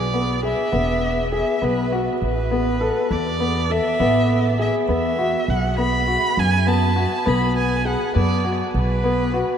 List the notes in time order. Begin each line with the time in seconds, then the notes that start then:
Already playing: B1 D5
0.14 B3
0.43 G#4 E5
0.72 E1 B3
1.32 G#4 E5
1.62 B1 B3 B4
1.92 F#4
2.22 A1 B4
2.51 B3
2.81 A4
3.11 E2 D5
3.40 B3
3.70 A4 E5
4.00 A1 B3
4.59 G#4 E5
4.89 E2 B3 E5
5.19 F#4
5.48 B1 F#5
5.78 B3 B5
6.07 F#4
6.37 F#2 G#5
6.67 B3 A5
6.96 F#4
7.26 B1 B3 B5
7.57 G#5
7.85 G#4 F#5
8.15 F#2 B3 D5
8.44 F#4
8.74 B1 B4
9.04 B3
9.34 F#4